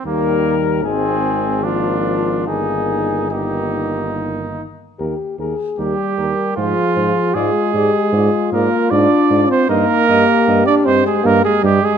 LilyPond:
<<
  \new Staff \with { instrumentName = "Cornet" } { \time 3/4 \key ees \major \tempo 4 = 76 bes'4 aes'4 f'4 | aes'4 g'4 r4 | bes'8 bes'8 bes'8 bes'8 c''8 c''8 | d''8 d''8 d''8 d''8 d''8 d''8 |
ees''8 ees''8 ees''8 ees''8 ees''8 ees''8 | }
  \new Staff \with { instrumentName = "Trumpet" } { \time 3/4 \key ees \major bes8 r8 c'4 d'4 | ees'4 ees'4. r8 | r4 g'4 f'4 | aes'4. bes'8 d''8. c''16 |
bes'4~ bes'16 d''16 c''16 aes'16 bes'16 aes'16 g'16 aes'16 | }
  \new Staff \with { instrumentName = "French horn" } { \time 3/4 \key ees \major g4 aes4 bes4 | bes4 bes4. r8 | g'8 aes'8 g'8 bes'8 aes'4 | f'8 g'8 f'2 |
ees'8 g'2~ g'8 | }
  \new Staff \with { instrumentName = "Trombone" } { \clef bass \time 3/4 \key ees \major ees4 ees4 f4 | ees4 ees4. r8 | r4 g4 f4 | aes4. bes8 d'8. c'16 |
bes4~ bes16 d'16 c'16 aes16 bes16 aes16 g16 aes16 | }
  \new Staff \with { instrumentName = "Tuba" } { \clef bass \time 3/4 \key ees \major ees,4 aes,,2 | g,,2~ g,,8 r8 | ees,8 ees,8 ees,8 ees,8 aes,8 aes,8 | aes,8 aes,8 aes,8 aes,8 aes,8 aes,8 |
g,8 g,8 g,8 g,8 g,8 g,8 | }
>>